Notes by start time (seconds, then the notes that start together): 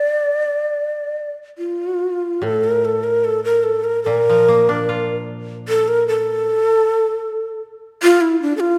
Already playing: D5
1.58 F4
2.42 A2 A4
2.64 A#4
2.85 A4
3.04 A#4
3.24 A4
3.44 A#4
3.64 A4
3.84 A#4
4.04 A#2 A#4
4.29 F3
4.48 A#3
4.69 D4
4.89 F4
5.68 A4
5.88 A#4
6.08 A4
8.03 F4
8.21 E4
8.42 D4
8.57 F4 A4